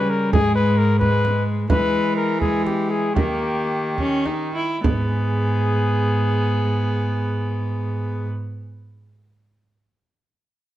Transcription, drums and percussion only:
0.33 frame drum medium
1.01 frame drum soft
1.25 frame drum medium
1.70 frame drum medium
2.42 frame drum medium
2.67 frame drum medium
3.16 frame drum medium
3.98 frame drum soft
4.26 frame drum medium
4.84 frame drum medium

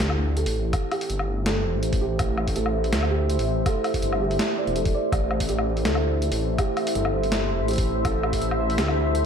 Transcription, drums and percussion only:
0.10 low woodblock medium
0.37 closed hi-hat medium
0.46 open hi-hat medium
0.73 kick loud
0.73 closed hi-hat medium
0.73 low woodblock medium
0.92 open hi-hat soft
0.92 low woodblock medium
1.01 open hi-hat medium
1.10 closed hi-hat medium
1.19 low woodblock medium
1.46 snare loud
1.46 closed hi-hat medium
1.83 closed hi-hat medium
1.93 kick loud
1.93 open hi-hat medium
2.19 kick loud
2.19 closed hi-hat medium
2.19 low woodblock medium
2.38 low woodblock medium
2.48 kick medium
2.48 open hi-hat medium
2.56 closed hi-hat medium
2.66 low woodblock medium
2.84 open hi-hat soft
2.93 snare loud
2.93 closed hi-hat medium
3.03 low woodblock medium
3.30 closed hi-hat medium
3.39 open hi-hat medium
3.66 kick loud
3.66 closed hi-hat medium
3.66 low woodblock medium
3.84 open hi-hat soft
3.84 low woodblock medium
3.94 kick medium
3.94 open hi-hat medium
4.02 closed hi-hat medium
4.13 low woodblock medium
4.31 open hi-hat soft
4.39 snare loud
4.39 closed hi-hat medium
4.67 closed hi-hat soft
4.76 closed hi-hat medium
4.85 kick loud
4.85 open hi-hat medium
5.12 kick loud
5.12 closed hi-hat medium
5.12 low woodblock medium
5.31 low woodblock medium
5.40 kick medium
5.40 open hi-hat medium
5.49 closed hi-hat medium
5.59 low woodblock medium
5.77 open hi-hat soft
5.85 snare loud
5.85 closed hi-hat medium
5.95 low woodblock medium
6.22 closed hi-hat medium
6.32 open hi-hat medium
6.58 kick loud
6.58 closed hi-hat medium
6.58 low woodblock medium
6.77 open hi-hat soft
6.77 low woodblock medium
6.87 open hi-hat medium
6.95 closed hi-hat medium
7.05 low woodblock medium
7.24 open hi-hat soft
7.32 snare loud
7.32 closed hi-hat medium
7.68 closed hi-hat medium
7.71 closed hi-hat medium
7.73 closed hi-hat soft
7.76 kick loud
7.76 closed hi-hat soft
7.76 open hi-hat medium
8.05 kick loud
8.05 closed hi-hat medium
8.05 low woodblock medium
8.23 low woodblock medium
8.33 kick medium
8.33 open hi-hat medium
8.42 closed hi-hat medium
8.51 low woodblock medium
8.70 open hi-hat soft
8.78 snare loud
8.78 closed hi-hat medium
8.88 low woodblock medium
9.15 closed hi-hat medium

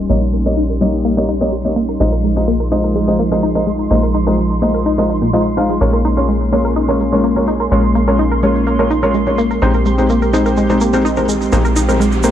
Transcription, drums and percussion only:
0.10 shaker soft
0.34 shaker medium
0.46 shaker soft
0.57 shaker soft
0.81 shaker medium
0.94 shaker soft
1.05 shaker medium
1.17 shaker soft
1.28 shaker medium
1.41 shaker soft
1.53 shaker soft
1.64 shaker soft
1.76 shaker medium
1.89 shaker soft
2.00 shaker soft
2.13 shaker soft
2.24 shaker medium
2.36 shaker soft
2.48 shaker soft
2.61 shaker soft
2.72 shaker medium
2.84 shaker soft
2.95 shaker medium
3.08 shaker soft
3.20 shaker loud
3.32 shaker soft
3.43 shaker medium
3.56 shaker soft
3.67 shaker medium
3.79 shaker soft
3.90 shaker soft
4.03 shaker soft
4.15 shaker loud
4.28 shaker soft
4.38 shaker soft
4.50 shaker soft
4.62 shaker medium
4.75 shaker soft
4.86 shaker soft
4.97 shaker soft
5.10 shaker medium
5.22 shaker soft
5.34 shaker medium
5.46 shaker soft
5.56 shaker medium
5.69 shaker soft
5.81 shaker soft
5.93 shaker soft
6.04 shaker medium
6.18 shaker soft
6.29 shaker soft
6.42 shaker soft
6.53 shaker medium
6.65 shaker soft
6.77 shaker soft
6.89 shaker soft
6.99 shaker medium
7.13 shaker soft
7.24 shaker soft
7.37 shaker soft
7.47 shaker medium
7.60 shaker soft
7.72 shaker soft
7.83 shaker soft
7.95 shaker medium
8.08 shaker soft
8.19 shaker soft
8.31 shaker soft
8.42 shaker medium
8.55 shaker soft
8.66 shaker soft
8.79 shaker soft
8.90 shaker medium
9.03 shaker soft
9.14 shaker soft
9.26 shaker soft
9.38 shaker medium
9.51 shaker soft
9.62 shaker soft
9.74 shaker soft
9.86 shaker medium
9.98 shaker soft
10.09 shaker soft
10.22 shaker soft
10.34 shaker medium
10.46 shaker soft
10.57 shaker soft
10.70 shaker soft
10.81 shaker medium
10.93 shaker soft
11.06 shaker soft
11.17 shaker soft
11.29 shaker medium
11.41 shaker soft
11.52 shaker soft
11.65 shaker soft
11.76 shaker medium
11.89 shaker soft
12.01 shaker soft
12.12 shaker soft
12.23 shaker medium

